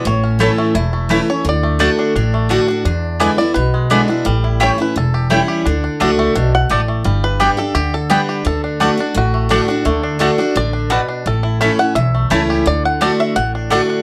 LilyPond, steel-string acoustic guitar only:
\new Staff \with { instrumentName = "Steel-string acoustic guitar" } { \time 4/4 \key d \major \tempo 4 = 171 << { r4 <e a cis' e'>4 r4 <e a cis' e'>8 <cis' e'>8 | r4 <d a d' fis'>4 r4 <d a d' fis'>8 <d' fis'>8 | r4 <d gis b e'>8 <b e'>8 r4 <d gis b e'>8 <b e'>8 | r4 <e g cis' e'>8 <cis' e'>8 r4 <e g cis' e'>4 |
r4 <a d' fis'>4 r2 | r4 <g b d' g'>8 <d' g'>8 r4 <g b d' g'>4 | r4 <d a d' fis'>8 <d' fis'>8 r4 <d a d' fis'>8 <d' fis'>8 | r4 <d a d' fis'>8 <d' fis'>8 r2 |
r4 <e a cis' e'>8 <cis' e'>8 r4 <e a cis' e'>4 | r4 <d a d' fis'>4 r4 <d a d' fis'>4 | } \\ { a,2 e,2 | d2 a,2 | e,2 b,2 | a,2 e,2 |
d2 b,4 a,4 | g,2 d2 | d2 a,2 | d2 d4 b,4 |
a,2 e,2 | d2 a,2 | } >> }